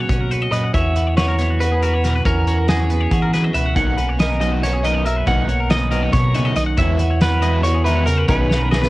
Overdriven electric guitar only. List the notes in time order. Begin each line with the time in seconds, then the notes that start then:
3.76 D#3 F#3 B3 D#4
3.98 muted overdriven electric guitar stroke
4.19 muted overdriven electric guitar stroke
4.40 D#3 F#3 B3 D#4
4.62 muted overdriven electric guitar stroke
4.84 D#3 F#3 B3 D#4
5.05 muted overdriven electric guitar stroke
5.26 D#3 F#3 B3 D#4
5.48 muted overdriven electric guitar stroke
5.69 muted overdriven electric guitar stroke
5.91 D#3 F#3 B3 D#4
6.13 muted overdriven electric guitar stroke
6.35 D#3 F#3 B3 D#4
6.56 muted overdriven electric guitar stroke
6.77 E3 G#3 B3 E4
6.99 muted overdriven electric guitar stroke
7.21 muted overdriven electric guitar stroke
7.42 E3 G#3 B3 E4
7.64 muted overdriven electric guitar stroke
7.85 E3 G#3 B3 E4
8.07 muted overdriven electric guitar stroke
8.28 D#3 F#3 B3 D#4
8.51 muted overdriven electric guitar stroke
8.72 muted overdriven electric guitar stroke